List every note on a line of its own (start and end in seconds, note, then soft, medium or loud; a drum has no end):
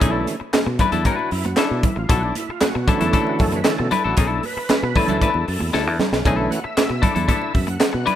0.00 0.23 B1 loud
0.00 0.36 D3 medium
0.00 0.36 E3 medium
0.00 0.36 A3 medium
0.00 0.37 C#4 medium
0.00 0.25 D4 medium
0.00 0.23 E4 medium
0.00 0.25 E4 medium
0.00 0.26 A4 medium
0.00 kick loud
0.00 closed hi-hat loud
0.00 muted conga soft
0.27 closed hi-hat medium
0.27 high conga medium
0.40 muted clean electric guitar stroke soft
0.40 muted fingered electric bass stroke soft
0.53 muted clean electric guitar stroke soft
0.53 muted fingered electric bass stroke medium
0.53 snare loud
0.53 clap medium
0.53 closed hi-hat medium
0.53 muted conga soft
0.53 high conga medium
0.66 0.77 B2 loud
0.66 muted clean electric guitar stroke soft
0.66 muted conga soft
0.79 0.92 D4 medium
0.79 0.92 E4 medium
0.79 0.92 B4 medium
0.79 kick medium
0.79 closed hi-hat medium
0.79 low conga medium
0.92 1.03 E2 medium
0.92 1.04 D4 medium
0.92 1.05 E4 medium
0.92 1.06 A4 medium
0.92 closed hi-hat soft
0.92 low conga medium
1.05 1.29 D4 medium
1.05 1.30 E4 loud
1.05 1.33 F#4 medium
1.05 1.30 B4 loud
1.05 kick medium
1.05 closed hi-hat medium
1.05 muted conga soft
1.05 high conga medium
1.19 muted conga soft
1.31 1.53 F#2 medium
1.31 1.45 E4 medium
1.31 muted clean electric guitar stroke soft
1.31 open hi-hat medium
1.44 1.58 F#4 medium
1.44 muted clean electric guitar stroke soft
1.44 closed hi-hat medium
1.44 high conga medium
1.57 1.81 D4 medium
1.57 1.85 D4 medium
1.57 1.82 E4 medium
1.57 1.82 A4 medium
1.57 snare medium
1.57 clap medium
1.57 closed hi-hat loud
1.57 muted conga soft
1.71 1.82 B2 loud
1.71 muted conga soft
1.83 1.98 E4 medium
1.83 muted clean electric guitar stroke soft
1.83 kick medium
1.83 closed hi-hat medium
1.83 low conga medium
1.96 2.07 A1 medium
1.96 2.10 F4 medium
1.96 muted clean electric guitar stroke soft
2.09 2.31 B1 loud
2.09 2.33 D4 medium
2.09 2.34 E4 medium
2.09 2.22 F#4 loud
2.09 2.34 A4 medium
2.09 kick loud
2.09 closed hi-hat loud
2.23 2.36 D4 medium
2.23 muted conga soft
2.35 2.50 E4 medium
2.35 closed hi-hat medium
2.35 high conga medium
2.49 2.62 F4 medium
2.49 muted fingered electric bass stroke soft
2.49 muted clean electric guitar stroke soft
2.61 2.89 F#4 medium
2.61 muted clean electric guitar stroke soft
2.61 muted fingered electric bass stroke medium
2.61 snare loud
2.61 clap medium
2.61 closed hi-hat medium
2.61 muted conga soft
2.61 high conga medium
2.75 2.86 B2 loud
2.75 muted clean electric guitar stroke soft
2.75 muted conga soft
2.88 3.62 D3 medium
2.88 3.62 E3 soft
2.88 3.62 A3 soft
2.88 3.62 C#4 medium
2.88 3.00 D4 medium
2.88 3.00 E4 medium
2.88 3.02 F#4 medium
2.88 2.99 A4 medium
2.88 kick medium
2.88 closed hi-hat medium
2.88 low conga medium
3.01 3.11 E2 medium
3.01 3.12 D4 medium
3.01 3.12 E4 medium
3.01 3.13 A4 medium
3.01 3.14 A4 loud
3.01 closed hi-hat medium
3.01 low conga medium
3.13 3.37 D4 medium
3.13 3.37 E4 loud
3.13 3.38 A4 medium
3.13 3.28 A4 loud
3.13 kick medium
3.13 closed hi-hat medium
3.13 muted conga soft
3.13 high conga medium
3.27 3.41 F#4 medium
3.27 muted conga soft
3.39 3.61 F#2 medium
3.39 3.54 A4 medium
3.39 muted clean electric guitar stroke soft
3.39 kick medium
3.39 open hi-hat medium
3.52 3.67 B4 medium
3.52 muted clean electric guitar stroke soft
3.52 closed hi-hat soft
3.52 high conga medium
3.65 3.89 D3 soft
3.65 3.89 E3 soft
3.65 3.89 A3 soft
3.65 3.89 C#4 medium
3.65 3.91 A4 medium
3.65 muted clean electric guitar stroke soft
3.65 snare loud
3.65 clap medium
3.65 closed hi-hat medium
3.65 muted conga soft
3.79 3.90 B2 loud
3.79 muted clean electric guitar stroke soft
3.79 muted conga soft
3.91 4.04 D4 medium
3.91 4.04 E4 medium
3.91 4.06 A4 medium
3.91 4.04 B4 medium
3.91 closed hi-hat medium
3.91 low conga medium
4.04 4.15 A1 medium
4.04 4.16 D4 medium
4.04 4.17 E4 medium
4.04 4.19 F#4 medium
4.04 4.17 A4 medium
4.17 4.39 B1 medium
4.17 4.41 D4 medium
4.17 4.41 E4 medium
4.17 4.42 A4 medium
4.17 4.45 A4 loud
4.17 kick loud
4.17 closed hi-hat loud
4.31 muted conga soft
4.43 4.98 B4 loud
4.43 open hi-hat medium
4.43 high conga medium
4.57 muted fingered electric bass stroke soft
4.57 muted clean electric guitar stroke soft
4.69 muted clean electric guitar stroke soft
4.69 muted fingered electric bass stroke soft
4.69 snare loud
4.69 clap medium
4.69 closed hi-hat medium
4.69 high conga medium
4.83 4.93 B2 loud
4.83 muted clean electric guitar stroke soft
4.83 muted conga soft
4.95 5.30 D3 medium
4.95 5.30 E3 soft
4.95 5.30 A3 soft
4.95 5.30 C#4 medium
4.95 5.08 D4 medium
4.95 5.08 E4 medium
4.95 5.70 A4 loud
4.95 5.08 B4 medium
4.95 kick medium
4.95 open hi-hat medium
4.95 low conga medium
5.08 5.19 D2 loud
5.08 5.20 D4 medium
5.08 5.21 E4 medium
5.08 5.22 A4 medium
5.08 closed hi-hat medium
5.08 low conga medium
5.21 5.45 D4 medium
5.21 5.46 E4 medium
5.21 5.46 B4 medium
5.21 kick medium
5.21 closed hi-hat medium
5.21 muted conga soft
5.21 high conga medium
5.34 5.45 E2 medium
5.34 muted conga soft
5.47 5.58 F#2 medium
5.47 muted clean electric guitar stroke soft
5.47 open hi-hat medium
5.60 5.71 E2 medium
5.60 muted clean electric guitar stroke soft
5.60 high conga medium
5.73 5.87 D2 medium
5.73 5.97 D4 medium
5.73 5.97 E4 loud
5.73 5.98 A4 medium
5.73 snare medium
5.73 muted conga soft
5.86 5.97 E2 medium
5.86 muted conga soft
5.99 muted clean electric guitar stroke soft
5.99 snare medium
5.99 low conga medium
6.12 6.23 B1 medium
6.12 muted clean electric guitar stroke soft
6.12 snare medium
6.24 6.46 B1 loud
6.24 6.48 D3 medium
6.24 6.59 E3 medium
6.24 6.60 A3 medium
6.24 6.60 C#4 medium
6.24 6.49 D4 medium
6.24 6.50 E4 medium
6.24 6.50 A4 medium
6.24 kick loud
6.24 closed hi-hat loud
6.24 muted conga soft
6.38 muted conga soft
6.50 6.64 F#5 loud
6.50 closed hi-hat medium
6.50 high conga medium
6.63 7.04 E5 medium
6.63 muted clean electric guitar stroke soft
6.63 muted fingered electric bass stroke soft
6.77 muted fingered electric bass stroke soft
6.77 muted clean electric guitar stroke soft
6.77 snare loud
6.77 clap medium
6.77 closed hi-hat medium
6.77 muted conga soft
6.77 high conga medium
6.90 7.00 B2 medium
6.90 muted clean electric guitar stroke soft
6.90 muted conga soft
7.02 7.15 D4 medium
7.02 7.14 E4 medium
7.02 7.14 A4 medium
7.02 7.14 D5 medium
7.02 kick medium
7.02 closed hi-hat medium
7.02 low conga medium
7.15 7.26 E2 loud
7.15 7.27 D4 medium
7.15 7.27 E4 medium
7.15 7.28 A4 medium
7.15 closed hi-hat medium
7.15 low conga medium
7.28 7.52 D4 medium
7.28 7.52 E4 medium
7.28 7.53 A4 medium
7.28 7.69 E5 medium
7.28 kick medium
7.28 closed hi-hat medium
7.28 muted conga soft
7.28 high conga medium
7.42 muted conga soft
7.54 7.76 F#2 medium
7.54 muted clean electric guitar stroke soft
7.54 kick medium
7.54 open hi-hat medium
7.67 8.08 F#5 medium
7.67 muted clean electric guitar stroke soft
7.67 closed hi-hat soft
7.67 high conga medium
7.80 muted clean electric guitar stroke soft
7.80 snare loud
7.80 clap medium
7.80 closed hi-hat medium
7.80 muted conga soft
7.93 8.05 B2 loud
7.93 muted clean electric guitar stroke soft
8.06 8.15 D4 medium
8.06 8.15 E4 medium
8.06 8.15 B4 medium
8.06 8.15 D5 loud
8.06 closed hi-hat medium
8.06 low conga medium